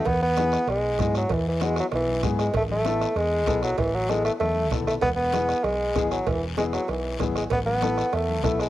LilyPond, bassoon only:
\new Staff \with { instrumentName = "Bassoon" } { \clef bass \time 4/4 \key e \major \tempo 4 = 193 b8 b4. gis4. fis8 | e8 e8 gis8 fis8 e4 r8 gis8 | a8 a4. gis4. fis8 | e8 fis8 gis8 a8 a4 r8 a8 |
b8 b4. gis4. fis8 | e8 r8 gis8 fis8 e4 r8 gis8 | b8 b4. a4 a8 gis8 | }